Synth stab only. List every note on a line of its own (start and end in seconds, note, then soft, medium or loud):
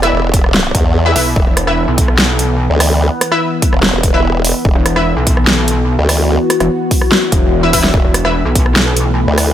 0.03 0.22 E4 loud
0.03 0.22 B4 medium
0.03 0.22 E5 loud
1.06 1.14 E4 medium
1.06 1.14 B4 medium
1.06 1.14 E5 loud
1.16 1.35 E4 loud
1.16 1.35 B4 medium
1.16 1.35 E5 loud
1.67 3.29 E4 medium
1.67 3.29 B4 medium
1.67 3.29 E5 medium
3.32 3.51 E4 loud
3.32 3.51 B4 medium
3.32 3.51 E5 loud
4.14 4.33 E4 medium
4.14 4.33 B4 medium
4.14 4.33 E5 medium
4.96 6.58 E4 medium
4.96 6.58 B4 medium
4.96 6.58 E5 loud
7.63 7.72 E4 medium
7.63 7.72 B4 medium
7.63 7.72 E5 loud
7.73 7.93 E4 loud
7.73 7.93 B4 medium
7.73 7.93 E5 loud
8.25 9.53 E4 medium
8.25 9.53 B4 medium
8.25 9.53 E5 loud